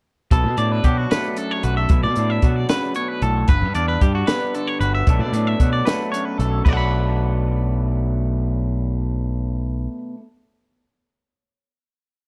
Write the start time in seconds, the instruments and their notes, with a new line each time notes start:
0.31 picked electric bass B1, clean electric guitar B2 A4, kick, closed hi-hat
0.44 picked electric bass B2
0.57 picked electric bass A2, clean electric guitar D4 D5, closed hi-hat
0.72 clean electric guitar B4
0.84 picked electric bass B2, clean electric guitar F#3 F#4 G4, kick, closed hi-hat
0.98 clean electric guitar F#4
1.11 clean electric guitar A3 B4, snare, closed hi-hat
1.37 clean electric guitar F#2 A4, closed hi-hat
1.51 clean electric guitar C#5
1.63 picked electric bass B1, clean electric guitar F#4 B4, closed hi-hat
1.77 clean electric guitar A4 E5
1.89 picked electric bass B1, clean electric guitar B2, kick, closed hi-hat
2.03 picked electric bass B2, clean electric guitar D5
2.16 picked electric bass A2, clean electric guitar D4, closed hi-hat
2.30 clean electric guitar E5
2.42 picked electric bass B2, clean electric guitar F#3 F#4, kick, closed hi-hat
2.56 clean electric guitar D5
2.69 clean electric guitar C#3 B4, snare, closed hi-hat
2.95 clean electric guitar B2 C#5, closed hi-hat
3.08 clean electric guitar B4
3.22 picked electric bass B1, clean electric guitar A2 A4, closed hi-hat
3.48 picked electric bass G1, clean electric guitar G2 B4, kick, closed hi-hat
3.62 picked electric bass G2
3.75 picked electric bass E2, clean electric guitar D4 D5, closed hi-hat
3.88 clean electric guitar B4
4.01 picked electric bass G2, clean electric guitar G3 G4, kick, closed hi-hat
4.15 clean electric guitar F#4
4.27 clean electric guitar B3 B4, snare, closed hi-hat
4.54 clean electric guitar D3 A4, closed hi-hat
4.67 clean electric guitar C#5
4.81 picked electric bass G1, clean electric guitar F#4 B4, closed hi-hat
4.95 clean electric guitar E5
5.07 picked electric bass B1, clean electric guitar B2 F#3 A3 D4 A4, kick, closed hi-hat
5.19 picked electric bass B2, clean electric guitar D5
5.33 picked electric bass A2, clean electric guitar D4, closed hi-hat
5.47 clean electric guitar E5
5.60 picked electric bass B2, clean electric guitar F#3 F#4, kick, closed hi-hat
5.73 clean electric guitar D5
5.85 clean electric guitar A3 B4, snare, closed hi-hat
6.12 clean electric guitar F#2 C#5, closed hi-hat
6.25 clean electric guitar B4
6.38 picked electric bass B1, clean electric guitar A4, closed hi-hat
6.65 picked electric bass B1, clean electric guitar B2 F#3 B4, kick, crash
6.69 clean electric guitar A3 D4 D5
6.73 clean electric guitar A4 F#5
6.77 clean electric guitar B5